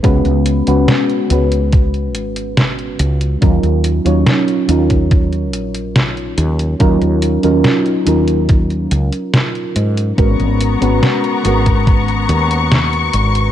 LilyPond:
<<
  \new Staff \with { instrumentName = "String section" } { \time 4/4 \key ees \minor \tempo 4 = 71 r1 | r1 | r1 | <ces' bes'' des'''>1 | }
  \new Staff \with { instrumentName = "FM electric piano" } { \time 4/4 \key ees \minor <aes ces' des' ges' ces''>16 r8 <aes ces' des' ges' ces''>8. <aes ces' des' ges' ces''>2~ <aes ces' des' ges' ces''>8 | <ges des' ees' f' bes'>8. <ges des' ees' f' des''>8. <ges des' ees' f' bes'>2~ <ges des' ees' f' bes'>8 | <ges des' ees' f' bes'>16 r8 <ges des' ees' f' bes'>8. <ges des' ees' f' bes'>2~ <ges des' ees' f' bes'>8 | <aes ces' des' ges' bes'>8. <aes ces' des' ges' ces''>8. <aes ces' des' ges' bes'>2~ <aes ces' des' ges' bes'>8 | }
  \new Staff \with { instrumentName = "Fretless electric bass" } { \clef bass \time 4/4 \key ees \minor des,16 des,8 des,16 r8 des,4 aes,,4 des,8 | ees,16 ees,8 ees,16 r8 ees,4 bes,,4 ees,8 | ees,16 ees,8 ees,16 r8 ees,4 des,16 r8. aes,8 | aes,,16 aes,,8 aes,,16 r8 aes,,4 ees,4 aes,,8 | }
  \new DrumStaff \with { instrumentName = "Drums" } \drummode { \time 4/4 <hh bd>16 hh16 hh16 hh16 <hh sn>16 hh16 hh16 hh16 <hh bd>16 hh16 hh16 hh16 <hh sn>16 hh16 hh16 hh16 | <hh bd>16 hh16 hh16 hh16 <hh sn>16 hh16 hh16 <hh bd>16 <hh bd>16 hh16 hh16 hh16 <hh sn>16 hh16 hh16 hh16 | <hh bd>16 hh16 hh16 hh16 <hh sn>16 hh16 hh16 hh16 <hh bd>16 hh16 hh16 hh16 <hh sn>16 hh16 hh16 hh16 | <hh bd>16 hh16 hh16 hh16 <hh sn>16 hh16 hh16 <hh bd>16 <hh bd>16 hh16 hh16 hh16 <hh sn>16 hh16 hh16 hh16 | }
>>